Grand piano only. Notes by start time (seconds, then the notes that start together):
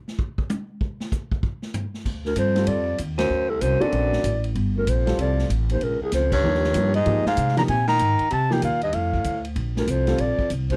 2.55 G3 C4 F4 A4
3.80 C4 D4 F#4 A4
5.06 G3 C4 F4 A4
6.43 F3 A#3 D#4 G4
6.74 F3 A#3 D#4 G4
7.06 F3 A#3 D#4 G4
7.57 F3 A#3 D#4 G4
8.51 F3 A#3 D#4 G4
10.07 G3 C4 F4 A4